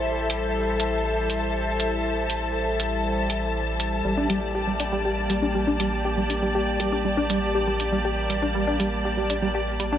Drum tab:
HH |-x-x-x-x|-x-x-x-x|-x-x-x-x|-x-x-x-x|

HH |-x-x-x-x|